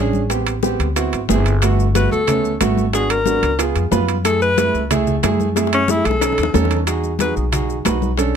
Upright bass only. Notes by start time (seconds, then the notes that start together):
Already playing: A1
0.80 D2
1.13 G#1
1.29 G1
2.11 D2
2.61 G#1
3.43 C#2
3.76 F2
3.92 F#2
4.74 C#2
5.24 F#2
6.06 B1
6.38 D#2
6.55 E2
7.37 B1
7.86 B1